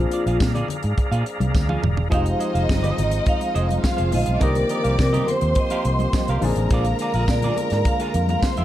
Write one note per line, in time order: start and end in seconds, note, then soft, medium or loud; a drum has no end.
0.00 2.08 F3 medium
0.00 2.08 A#3 medium
0.00 2.09 C4 medium
0.00 2.09 D4 medium
0.00 0.37 F4 medium
0.00 2.08 G#4 medium
0.00 2.09 G#4 medium
0.00 2.08 D5 medium
0.00 2.08 F5 medium
0.00 2.08 A#5 medium
0.11 0.22 F4 medium
0.11 0.23 G#4 medium
0.11 0.23 D5 medium
0.11 closed hi-hat medium
0.26 0.37 A#1 loud
0.26 0.38 F4 soft
0.26 0.38 G#4 medium
0.26 0.37 F5 medium
0.26 closed hi-hat soft
0.40 0.62 A#2 medium
0.40 muted clean electric guitar stroke soft
0.40 kick loud
0.40 snare loud
0.40 tambourine medium
0.40 high conga medium
0.55 0.67 F4 medium
0.55 0.68 G#4 medium
0.55 0.68 D5 medium
0.55 closed hi-hat soft
0.55 low conga medium
0.68 muted clean electric guitar stroke soft
0.68 closed hi-hat medium
0.68 low conga medium
0.83 0.94 G#2 medium
0.83 muted clean electric guitar stroke soft
0.83 closed hi-hat soft
0.98 muted clean electric guitar stroke soft
0.98 muted fingered electric bass stroke soft
0.98 kick medium
0.98 closed hi-hat medium
1.12 1.22 A#2 loud
1.12 1.24 F4 medium
1.12 1.25 G#4 medium
1.12 1.25 F5 medium
1.12 closed hi-hat soft
1.25 muted clean electric guitar stroke soft
1.25 closed hi-hat soft
1.39 1.51 C2 medium
1.39 muted clean electric guitar stroke soft
1.39 closed hi-hat soft
1.39 high conga medium
1.55 1.76 D2 medium
1.55 muted clean electric guitar stroke soft
1.55 kick loud
1.55 snare soft
1.55 tambourine medium
1.55 high conga medium
1.69 1.82 F4 medium
1.69 1.83 G#4 medium
1.69 1.83 F5 medium
1.69 high tom medium
1.69 muted conga soft
1.83 2.04 E1 medium
1.83 muted clean electric guitar stroke soft
1.83 mid tom medium
1.83 low conga medium
1.97 muted clean electric guitar stroke soft
1.97 floor tom medium
2.10 2.33 F1 medium
2.10 4.08 F3 medium
2.10 6.38 F3 medium
2.10 4.08 G#3 medium
2.10 4.39 G#3 medium
2.10 4.09 C4 medium
2.10 6.38 C4 medium
2.10 3.80 D#4 medium
2.10 4.09 D#4 medium
2.10 4.39 F4 medium
2.10 4.09 G4 medium
2.10 2.25 G#4 medium
2.10 2.25 C5 medium
2.10 3.80 D#5 loud
2.10 2.26 D#5 medium
2.10 kick loud
2.10 closed hi-hat medium
2.10 muted conga soft
2.14 2.72 F5 loud
2.26 closed hi-hat soft
2.39 2.51 G#4 medium
2.39 2.51 C5 medium
2.39 2.51 D#5 medium
2.39 closed hi-hat medium
2.54 2.66 F1 loud
2.54 2.66 G#4 soft
2.54 2.66 C5 soft
2.54 2.66 F5 medium
2.54 closed hi-hat soft
2.69 2.91 G1 medium
2.69 3.29 D#5 medium
2.69 muted clean electric guitar stroke soft
2.69 kick loud
2.69 snare loud
2.69 tambourine medium
2.69 muted conga soft
2.69 high conga medium
2.83 2.96 G#4 medium
2.83 2.96 C5 medium
2.83 2.97 D#5 medium
2.83 closed hi-hat soft
2.83 muted conga soft
2.83 high conga medium
2.83 low conga medium
2.97 3.19 G#1 medium
2.97 muted clean electric guitar stroke soft
2.97 closed hi-hat medium
2.97 low conga medium
3.11 muted clean electric guitar stroke soft
3.11 closed hi-hat medium
3.26 4.16 F5 loud
3.26 kick loud
3.26 closed hi-hat medium
3.40 muted clean electric guitar stroke soft
3.40 closed hi-hat soft
3.40 muted conga soft
3.54 3.77 F1 medium
3.54 3.69 G#4 medium
3.54 3.68 C5 medium
3.54 3.67 D#5 medium
3.54 closed hi-hat medium
3.68 muted clean electric guitar stroke soft
3.68 closed hi-hat soft
3.68 high conga medium
3.82 4.40 F4 medium
3.82 4.40 F5 medium
3.82 muted clean electric guitar stroke soft
3.82 kick loud
3.82 snare loud
3.82 tambourine medium
3.82 high conga medium
3.97 4.10 F1 medium
3.97 4.10 G#4 medium
3.97 4.10 C5 medium
3.97 4.11 F5 medium
3.97 closed hi-hat soft
3.97 muted conga soft
4.11 4.24 A#1 medium
4.11 4.41 F3 soft
4.11 4.42 G#3 soft
4.11 4.40 C4 soft
4.11 4.42 D#4 soft
4.11 4.42 F4 medium
4.11 4.43 D#5 medium
4.11 muted clean electric guitar stroke soft
4.11 open hi-hat medium
4.11 low conga medium
4.26 4.38 B1 medium
4.26 muted clean electric guitar stroke soft
4.26 closed hi-hat medium
4.40 4.62 C2 medium
4.40 6.38 D3 medium
4.40 6.37 D#3 medium
4.40 6.38 A#3 medium
4.40 8.65 A#3 medium
4.40 6.38 C4 medium
4.40 4.55 G4 medium
4.40 6.40 G4 medium
4.40 6.39 G4 medium
4.40 4.55 A#4 medium
4.40 4.96 A#4 medium
4.40 5.26 D5 medium
4.40 4.56 D#5 medium
4.40 5.26 D6 medium
4.40 kick loud
4.40 closed hi-hat medium
4.40 muted conga soft
4.55 closed hi-hat soft
4.55 muted conga soft
4.69 4.81 G4 soft
4.69 4.81 A#4 medium
4.69 4.81 D#5 medium
4.69 closed hi-hat medium
4.84 4.95 C2 medium
4.84 4.96 G4 soft
4.84 4.95 A#4 medium
4.84 4.95 F5 medium
4.84 closed hi-hat soft
4.99 5.20 C3 loud
4.99 5.30 A#4 medium
4.99 muted clean electric guitar stroke soft
4.99 kick loud
4.99 snare loud
4.99 tambourine medium
4.99 high conga medium
5.13 5.26 G4 medium
5.13 5.27 A#4 medium
5.13 5.27 D#5 medium
5.13 closed hi-hat soft
5.13 muted conga soft
5.13 high conga medium
5.13 low conga medium
5.27 6.39 C5 medium
5.27 5.56 C5 medium
5.27 6.39 C6 medium
5.27 closed hi-hat medium
5.27 low conga medium
5.41 5.52 D#2 medium
5.41 muted clean electric guitar stroke soft
5.41 closed hi-hat soft
5.55 muted clean electric guitar stroke soft
5.55 kick loud
5.55 closed hi-hat medium
5.59 6.40 D#5 medium
5.70 5.85 G4 medium
5.70 5.85 A#4 medium
5.70 5.84 F5 medium
5.70 closed hi-hat medium
5.70 muted conga soft
5.85 6.06 C2 medium
5.85 muted clean electric guitar stroke soft
5.85 closed hi-hat medium
5.99 muted clean electric guitar stroke soft
5.99 closed hi-hat soft
5.99 high conga medium
6.13 muted clean electric guitar stroke soft
6.13 kick loud
6.13 snare loud
6.13 tambourine medium
6.13 muted conga soft
6.13 high conga medium
6.27 6.39 C2 medium
6.27 6.43 G4 medium
6.27 6.43 A#4 medium
6.27 6.42 F5 medium
6.27 closed hi-hat soft
6.27 muted conga soft
6.41 6.53 A#1 medium
6.41 8.65 D3 medium
6.41 8.65 F3 medium
6.41 8.65 G#3 medium
6.41 8.65 A#3 medium
6.41 8.65 C4 medium
6.41 8.65 D4 medium
6.41 8.65 F4 medium
6.41 8.65 G#4 medium
6.41 8.39 A#4 medium
6.41 8.39 A#5 medium
6.41 muted clean electric guitar stroke soft
6.41 open hi-hat medium
6.41 low conga medium
6.56 6.67 A1 medium
6.56 muted clean electric guitar stroke soft
6.56 closed hi-hat medium
6.70 6.92 A#1 loud
6.70 6.85 F4 medium
6.70 6.85 G#4 medium
6.70 6.86 D5 loud
6.70 7.31 F5 loud
6.70 kick loud
6.70 closed hi-hat medium
6.85 closed hi-hat soft
6.99 7.11 F4 medium
6.99 7.11 G#4 medium
6.99 7.11 D5 medium
6.99 closed hi-hat medium
7.14 7.24 A#1 loud
7.14 7.26 F4 medium
7.14 7.25 G#4 medium
7.14 7.25 F5 medium
7.14 closed hi-hat soft
7.28 7.49 A#2 loud
7.28 7.88 D5 medium
7.28 muted clean electric guitar stroke soft
7.28 kick loud
7.28 snare loud
7.28 tambourine medium
7.28 high conga medium
7.42 7.56 F4 medium
7.42 7.57 G#4 medium
7.42 7.57 D5 medium
7.42 closed hi-hat soft
7.42 high conga medium
7.42 low conga medium
7.56 closed hi-hat medium
7.56 low conga medium
7.70 7.82 G#2 medium
7.70 muted clean electric guitar stroke soft
7.70 snare soft
7.70 closed hi-hat soft
7.85 8.29 F5 loud
7.85 muted clean electric guitar stroke soft
7.85 kick loud
7.85 closed hi-hat medium
7.99 8.13 F4 medium
7.99 8.14 G#4 medium
7.99 8.14 F5 medium
7.99 closed hi-hat soft
7.99 muted conga soft
8.14 8.35 F2 medium
8.14 muted clean electric guitar stroke soft
8.14 closed hi-hat medium
8.28 8.65 F5 loud
8.28 muted clean electric guitar stroke soft
8.28 closed hi-hat soft
8.28 high conga medium
8.42 8.65 C5 medium
8.42 8.65 C6 medium
8.42 muted clean electric guitar stroke soft
8.42 kick loud
8.42 snare loud
8.42 tambourine loud
8.42 muted conga soft
8.42 high conga medium
8.57 8.65 F2 medium
8.57 8.65 F4 medium
8.57 8.65 G#4 medium
8.57 8.65 F5 loud
8.57 closed hi-hat soft
8.57 muted conga soft